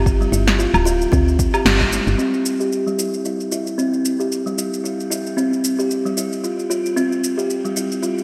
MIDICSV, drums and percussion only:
0, 0, Header, 1, 2, 480
1, 0, Start_track
1, 0, Key_signature, 0, "major"
1, 0, Tempo, 530973
1, 59, Time_signature, 4, 2, 24, 8
1, 7445, End_track
2, 0, Start_track
2, 0, Title_t, "Drums"
2, 56, Note_on_c, 9, 36, 116
2, 61, Note_on_c, 9, 82, 41
2, 146, Note_off_c, 9, 36, 0
2, 152, Note_off_c, 9, 82, 0
2, 197, Note_on_c, 9, 82, 20
2, 288, Note_off_c, 9, 82, 0
2, 300, Note_on_c, 9, 82, 69
2, 390, Note_off_c, 9, 82, 0
2, 430, Note_on_c, 9, 38, 71
2, 435, Note_on_c, 9, 82, 31
2, 520, Note_off_c, 9, 38, 0
2, 525, Note_off_c, 9, 82, 0
2, 541, Note_on_c, 9, 82, 42
2, 631, Note_off_c, 9, 82, 0
2, 671, Note_on_c, 9, 77, 80
2, 676, Note_on_c, 9, 82, 20
2, 762, Note_off_c, 9, 77, 0
2, 767, Note_off_c, 9, 82, 0
2, 783, Note_on_c, 9, 82, 75
2, 874, Note_off_c, 9, 82, 0
2, 919, Note_on_c, 9, 82, 31
2, 1009, Note_off_c, 9, 82, 0
2, 1017, Note_on_c, 9, 36, 102
2, 1021, Note_on_c, 9, 82, 40
2, 1108, Note_off_c, 9, 36, 0
2, 1111, Note_off_c, 9, 82, 0
2, 1158, Note_on_c, 9, 82, 21
2, 1249, Note_off_c, 9, 82, 0
2, 1258, Note_on_c, 9, 36, 94
2, 1261, Note_on_c, 9, 82, 73
2, 1348, Note_off_c, 9, 36, 0
2, 1351, Note_off_c, 9, 82, 0
2, 1391, Note_on_c, 9, 77, 78
2, 1396, Note_on_c, 9, 82, 30
2, 1481, Note_off_c, 9, 77, 0
2, 1487, Note_off_c, 9, 82, 0
2, 1498, Note_on_c, 9, 38, 78
2, 1503, Note_on_c, 9, 82, 42
2, 1588, Note_off_c, 9, 38, 0
2, 1593, Note_off_c, 9, 82, 0
2, 1634, Note_on_c, 9, 36, 58
2, 1637, Note_on_c, 9, 82, 20
2, 1724, Note_off_c, 9, 36, 0
2, 1727, Note_off_c, 9, 82, 0
2, 1740, Note_on_c, 9, 82, 73
2, 1831, Note_off_c, 9, 82, 0
2, 1876, Note_on_c, 9, 82, 28
2, 1966, Note_off_c, 9, 82, 0
2, 1981, Note_on_c, 9, 82, 35
2, 2072, Note_off_c, 9, 82, 0
2, 2115, Note_on_c, 9, 82, 19
2, 2205, Note_off_c, 9, 82, 0
2, 2220, Note_on_c, 9, 82, 63
2, 2311, Note_off_c, 9, 82, 0
2, 2356, Note_on_c, 9, 82, 29
2, 2446, Note_off_c, 9, 82, 0
2, 2462, Note_on_c, 9, 82, 37
2, 2552, Note_off_c, 9, 82, 0
2, 2598, Note_on_c, 9, 82, 19
2, 2689, Note_off_c, 9, 82, 0
2, 2702, Note_on_c, 9, 82, 68
2, 2792, Note_off_c, 9, 82, 0
2, 2838, Note_on_c, 9, 82, 29
2, 2928, Note_off_c, 9, 82, 0
2, 2940, Note_on_c, 9, 82, 40
2, 3031, Note_off_c, 9, 82, 0
2, 3076, Note_on_c, 9, 82, 19
2, 3167, Note_off_c, 9, 82, 0
2, 3182, Note_on_c, 9, 82, 67
2, 3272, Note_off_c, 9, 82, 0
2, 3318, Note_on_c, 9, 82, 27
2, 3408, Note_off_c, 9, 82, 0
2, 3423, Note_on_c, 9, 82, 38
2, 3514, Note_off_c, 9, 82, 0
2, 3558, Note_on_c, 9, 82, 18
2, 3648, Note_off_c, 9, 82, 0
2, 3663, Note_on_c, 9, 82, 64
2, 3754, Note_off_c, 9, 82, 0
2, 3800, Note_on_c, 9, 82, 26
2, 3890, Note_off_c, 9, 82, 0
2, 3904, Note_on_c, 9, 82, 40
2, 3995, Note_off_c, 9, 82, 0
2, 4040, Note_on_c, 9, 82, 19
2, 4131, Note_off_c, 9, 82, 0
2, 4143, Note_on_c, 9, 82, 66
2, 4233, Note_off_c, 9, 82, 0
2, 4282, Note_on_c, 9, 82, 31
2, 4373, Note_off_c, 9, 82, 0
2, 4387, Note_on_c, 9, 82, 41
2, 4477, Note_off_c, 9, 82, 0
2, 4523, Note_on_c, 9, 82, 22
2, 4613, Note_off_c, 9, 82, 0
2, 4625, Note_on_c, 9, 82, 71
2, 4715, Note_off_c, 9, 82, 0
2, 4761, Note_on_c, 9, 82, 29
2, 4852, Note_off_c, 9, 82, 0
2, 4864, Note_on_c, 9, 82, 42
2, 4954, Note_off_c, 9, 82, 0
2, 5000, Note_on_c, 9, 82, 19
2, 5091, Note_off_c, 9, 82, 0
2, 5102, Note_on_c, 9, 82, 72
2, 5192, Note_off_c, 9, 82, 0
2, 5239, Note_on_c, 9, 82, 30
2, 5329, Note_off_c, 9, 82, 0
2, 5341, Note_on_c, 9, 82, 39
2, 5432, Note_off_c, 9, 82, 0
2, 5478, Note_on_c, 9, 82, 20
2, 5569, Note_off_c, 9, 82, 0
2, 5582, Note_on_c, 9, 82, 70
2, 5672, Note_off_c, 9, 82, 0
2, 5719, Note_on_c, 9, 82, 28
2, 5809, Note_off_c, 9, 82, 0
2, 5824, Note_on_c, 9, 82, 38
2, 5914, Note_off_c, 9, 82, 0
2, 5961, Note_on_c, 9, 82, 20
2, 6051, Note_off_c, 9, 82, 0
2, 6065, Note_on_c, 9, 82, 63
2, 6155, Note_off_c, 9, 82, 0
2, 6199, Note_on_c, 9, 82, 31
2, 6290, Note_off_c, 9, 82, 0
2, 6302, Note_on_c, 9, 82, 42
2, 6392, Note_off_c, 9, 82, 0
2, 6438, Note_on_c, 9, 82, 21
2, 6529, Note_off_c, 9, 82, 0
2, 6543, Note_on_c, 9, 82, 72
2, 6633, Note_off_c, 9, 82, 0
2, 6678, Note_on_c, 9, 82, 32
2, 6769, Note_off_c, 9, 82, 0
2, 6782, Note_on_c, 9, 82, 42
2, 6872, Note_off_c, 9, 82, 0
2, 6918, Note_on_c, 9, 82, 21
2, 7008, Note_off_c, 9, 82, 0
2, 7021, Note_on_c, 9, 82, 77
2, 7111, Note_off_c, 9, 82, 0
2, 7158, Note_on_c, 9, 82, 30
2, 7248, Note_off_c, 9, 82, 0
2, 7260, Note_on_c, 9, 82, 41
2, 7351, Note_off_c, 9, 82, 0
2, 7398, Note_on_c, 9, 82, 20
2, 7445, Note_off_c, 9, 82, 0
2, 7445, End_track
0, 0, End_of_file